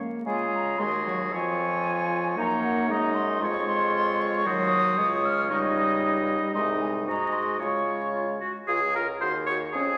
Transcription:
0.00 french horn A#3
0.26 bassoon C#3, french horn G#3, clarinet F4, oboe G#4, flute G#5
0.54 flute A#5
0.78 bassoon D#2, french horn G#3, clarinet F#4, oboe G#4, flute C6
1.07 french horn F#3, flute C#6
1.32 bassoon F2, french horn F3, clarinet F4, oboe C#5, flute G#5
2.37 bassoon F#2, french horn A#3, clarinet D#4, oboe C#5, flute A#5
2.63 flute F#5
2.89 french horn G#3, clarinet D#4, oboe D#5, flute A#5
3.15 flute C6
3.41 bassoon F2, french horn G#3, clarinet F4, oboe C#5, flute C#6
3.69 flute C6
3.94 flute C6
4.21 flute C#6
4.45 bassoon D#2, french horn F#3, clarinet F#4, oboe C5, flute D#6
4.97 bassoon C#2, french horn G#3, clarinet F4, oboe C#5
5.25 flute F6
5.50 french horn G3, clarinet D#4, oboe D#5, flute C#6
5.78 flute D#6
6.53 bassoon C2, french horn G#3, clarinet D#4, oboe D#5, flute C6
6.81 flute G#5
7.06 bassoon G#2, french horn G#3, clarinet F#4, oboe D#5, flute A#5
7.33 flute C6
7.59 bassoon C#3, french horn G#3, clarinet F4, oboe C#5, flute C#6
8.14 clarinet F4
8.40 clarinet F#4
8.67 bassoon C#2, french horn F4, oboe G#4, clarinet G#4, flute G#5
8.94 french horn F4, clarinet G#4, oboe A#4, flute A#5
9.20 bassoon D#2, french horn F#4, clarinet G#4, oboe C5, flute C6
9.46 french horn F#4, clarinet G#4, oboe C#5, flute C#6
9.73 bassoon F2, french horn C#4, oboe G#4, clarinet G#4, flute G#5

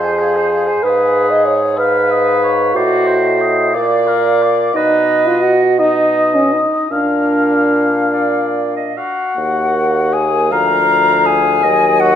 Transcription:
Already playing: bassoon F2, french horn G#4, oboe C5
0.04 clarinet C5, flute G#5
0.19 clarinet G#4, flute F5
0.36 clarinet C5, flute G#5
0.51 clarinet G#4, flute F5
0.67 clarinet C5, flute G#5
0.83 bassoon G#2, oboe G#4, french horn B4, clarinet B4, flute F5
1.31 french horn D#5
1.46 french horn C#5
1.77 french horn B4, clarinet B4, oboe F5
1.81 flute F5
2.11 oboe D#5
2.44 oboe C#5
2.75 bassoon A2, french horn F#4, clarinet C5, oboe D5, flute D#5
3.07 oboe C5
3.41 oboe D#5
3.72 bassoon A#2, clarinet D5, oboe D5, flute F5
4.07 oboe A#4
4.43 oboe D5
4.74 bassoon B2, french horn D#4, oboe B4, flute D#5, clarinet D#5
5.27 french horn F4
5.42 french horn F#4
5.79 french horn D#4, oboe D#5, clarinet D#5, flute D#5
6.35 french horn C#4
6.53 french horn D#4
6.91 bassoon A#2, french horn D4, clarinet A#4, flute F5, oboe F5
8.12 clarinet D5
8.76 clarinet D#5
8.97 oboe F#4, clarinet F5, flute F#5
9.36 bassoon D#2, french horn A#3
10.13 oboe G#4, flute G#5
10.51 bassoon D2, french horn F3, oboe A#4, clarinet F5, flute A#5
11.26 oboe G#4, flute G#5
11.63 bassoon D#2, french horn F#3, clarinet D#5
12.00 oboe F#4, flute F#5

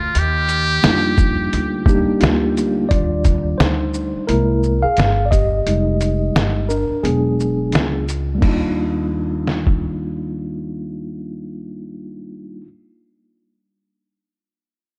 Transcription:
Already playing: upright bass D2, muted trumpet F4
0.15 upright bass D#2, muted trumpet G4, closed hi-hat
0.49 closed hi-hat, shaker
0.83 upright bass F2, tine electric piano G3 A#3 D4 D#4 E4, snare, closed hi-hat
0.92 tine electric piano F4
1.18 kick, shaker
1.53 upright bass D2, closed hi-hat
1.86 tine electric piano G3 A#3 D4 D#4 G4, kick, shaker
2.09 muted upright bass stroke
2.21 upright bass D2, tine electric piano A#3 F4, snare, closed hi-hat
2.57 closed hi-hat, shaker
2.89 upright bass D#2, tine electric piano G3 D4 F4 D5, kick, closed hi-hat
3.25 kick, closed hi-hat, shaker
3.58 upright bass D2, tine electric piano D#4 C5, snare, closed hi-hat
3.94 shaker
4.15 muted upright bass stroke
4.27 upright bass C2, tine electric piano G#3 A#3 E4 A#4, closed hi-hat
4.63 shaker
4.82 tine electric piano G#4 F5, muted upright bass stroke
4.97 upright bass G1, snare, closed hi-hat
5.25 tine electric piano D5
5.31 tine electric piano G4 D#5, kick, closed hi-hat, shaker
5.66 upright bass F1, tine electric piano G3 G#3 D#4, closed hi-hat
6.01 closed hi-hat, shaker
6.35 upright bass G1, snare, closed hi-hat
6.69 tine electric piano D4 A#4, shaker
6.90 muted upright bass stroke
7.03 upright bass E1, tine electric piano F#3 G#3 B3 D4 G#4, closed hi-hat
7.40 shaker
7.72 upright bass C#2, snare, closed hi-hat
8.09 closed hi-hat, shaker
8.35 tine electric piano G3 A#3
8.41 upright bass D#2, tine electric piano D4 D#4, kick, crash
8.48 tine electric piano F4
9.47 snare
9.67 kick

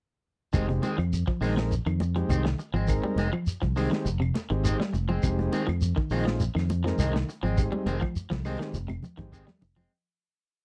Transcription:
0.53 fingered electric bass F1, clean electric guitar D#3 G#3 C4, transistor combo organ G#3 C4 D#4 G4, kick, closed hi-hat, claves, shekere
0.68 clean electric guitar C3, muted clean electric guitar stroke, closed hi-hat, high conga
0.82 clean electric guitar D#3 G#3 C4, closed hi-hat, high conga, shekere
0.98 fingered electric bass F2, clean electric guitar F3, muted clean electric guitar stroke, closed hi-hat, claves
1.13 closed hi-hat, shekere
1.27 clean electric guitar F3, muted clean electric guitar stroke, kick
1.41 fingered electric bass A#1, clean electric guitar D#3 G#3 C4, transistor combo organ G#3 C4 D#4 A#4, open hi-hat, claves, shekere
1.56 clean electric guitar F3, muted clean electric guitar stroke, snare
1.71 muted clean electric guitar stroke, closed hi-hat, shekere
1.86 fingered electric bass F2, clean electric guitar D#3, closed hi-hat, claves
2.00 muted clean electric guitar stroke, closed hi-hat, high conga, shekere
2.16 clean electric guitar F3, transistor combo organ G#3 C4 D#4 G4, closed hi-hat
2.29 fingered electric bass C2, clean electric guitar D#3 C4, muted clean electric guitar stroke, closed hi-hat, high conga, claves, shekere
2.45 clean electric guitar D#3, muted clean electric guitar stroke, snare, closed hi-hat
2.59 muted clean electric guitar stroke, closed hi-hat, shekere
2.74 fingered electric bass G#1, clean electric guitar F3 G#3 C4, closed hi-hat
2.88 transistor combo organ G#3 C4 D#4 A#4, kick, closed hi-hat, claves, shekere
3.03 clean electric guitar G3, muted clean electric guitar stroke, high conga
3.16 fingered electric bass F1, clean electric guitar G#3 C4, muted clean electric guitar stroke, snare, closed hi-hat, high conga, shekere
3.32 clean electric guitar F3, muted clean electric guitar stroke, claves
3.46 muted fingered electric bass stroke, closed hi-hat, shekere
3.62 fingered electric bass C2, clean electric guitar F3, muted clean electric guitar stroke, kick, closed hi-hat
3.76 clean electric guitar D#3 G#3 C4, transistor combo organ G#3 C4 D#4 G4, open hi-hat, claves, shekere
3.91 clean electric guitar D#3, muted clean electric guitar stroke, snare, closed hi-hat
4.05 fingered electric bass F1, muted clean electric guitar stroke, closed hi-hat, shekere
4.20 clean electric guitar C3, closed hi-hat, claves
4.34 muted clean electric guitar stroke, snare, closed hi-hat, high conga, shekere
4.50 fingered electric bass G#1, clean electric guitar D#3, transistor combo organ G#3 C4 D#4 G4, closed hi-hat
4.64 clean electric guitar D#3 G#3 C4, closed hi-hat, high conga, claves, shekere
4.79 clean electric guitar G3, muted clean electric guitar stroke, snare, closed hi-hat
4.93 fingered electric bass F1, muted clean electric guitar stroke, closed hi-hat, high conga, shekere
5.09 clean electric guitar F3 G#3 C4, high conga
5.23 fingered electric bass F1, transistor combo organ G#3 C4 D#4 G4, kick, closed hi-hat, claves, shekere
5.39 muted clean electric guitar stroke, closed hi-hat, high conga
5.52 clean electric guitar D#3 G#3 C4, snare, closed hi-hat, high conga, shekere
5.67 fingered electric bass F2, clean electric guitar F3, muted clean electric guitar stroke, closed hi-hat, high conga, claves
5.82 closed hi-hat, shekere
5.96 clean electric guitar D#3, muted clean electric guitar stroke, kick
6.10 fingered electric bass A#1, clean electric guitar D#3 G#3 C4, transistor combo organ G#3 C4 D#4 F4, open hi-hat, claves, shekere
6.25 clean electric guitar F3, muted clean electric guitar stroke, snare
6.40 muted clean electric guitar stroke, closed hi-hat, shekere
6.55 fingered electric bass F2, clean electric guitar D#3, snare, closed hi-hat, claves
6.70 muted clean electric guitar stroke, closed hi-hat, high conga, shekere
6.84 clean electric guitar F3, transistor combo organ G#3 C4 D#4 A#4, snare, closed hi-hat
6.98 fingered electric bass C2, clean electric guitar D#3 G#3 C4, snare, closed hi-hat, high conga, claves, shekere
7.13 clean electric guitar D#3, muted clean electric guitar stroke, snare, closed hi-hat
7.29 muted clean electric guitar stroke, closed hi-hat, shekere
7.43 fingered electric bass G#1, clean electric guitar F3 G#3 C4, closed hi-hat
7.57 transistor combo organ G#3 C4 D#4 G4, kick, closed hi-hat, claves, shekere
7.72 clean electric guitar G3, muted clean electric guitar stroke, high conga
7.86 fingered electric bass F1, clean electric guitar D#3 G#3 C4, closed hi-hat, high conga, shekere
8.01 clean electric guitar F3, muted clean electric guitar stroke, kick, high conga, claves
8.15 muted fingered electric bass stroke, closed hi-hat, shekere
8.30 fingered electric bass C2, clean electric guitar F3, muted clean electric guitar stroke, kick, snare, closed hi-hat
8.45 clean electric guitar D#3 G#3 C4, transistor combo organ G#3 C4 D#4 G4, open hi-hat, claves, shekere
8.59 clean electric guitar D#3, muted clean electric guitar stroke, snare, closed hi-hat
8.73 fingered electric bass F1, muted clean electric guitar stroke, closed hi-hat, high conga, shekere
8.88 clean electric guitar C3, closed hi-hat, high conga, claves
9.03 muted clean electric guitar stroke, closed hi-hat, low conga, shekere
9.17 fingered electric bass G#1, clean electric guitar D#3, transistor combo organ G#3 C4 D#4 G4, kick, closed hi-hat, low conga
9.32 clean electric guitar D#3 G#3 C4, kick, closed hi-hat, claves, shekere
9.47 clean electric guitar G3, muted clean electric guitar stroke, snare, closed hi-hat, low conga
9.61 fingered electric bass F1, muted clean electric guitar stroke, open hi-hat, low conga, shekere
9.76 clean electric guitar F3 G#3 C4, low conga

